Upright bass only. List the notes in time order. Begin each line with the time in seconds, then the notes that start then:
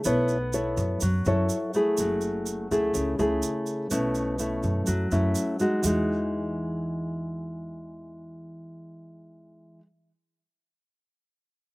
0.05 B1
0.77 F#2
1.02 F#2
1.26 F#2
1.98 F#1
2.71 C#2
2.95 C#2
3.19 C#2
3.92 B1
4.64 F#2
4.88 F#2
5.12 F#2
5.84 E2